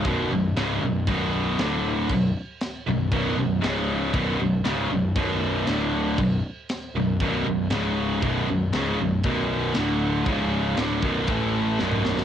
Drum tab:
CC |x---x---x---x---|x---x---x---x---|x---x---x---x---|x---x---x---x---|
SD |----o-------o---|----o-------o---|----o-------o---|----o-------o---|
T2 |----------------|----------------|----------------|----------------|
BD |o-------o-------|o-------o-------|o-------o-------|o-------o-------|

CC |x---x---x---x---|x---x---x-------|
SD |----o-------o---|----o-------o-oo|
T2 |----------------|-------------o--|
BD |o-------o-------|o-----o-o-------|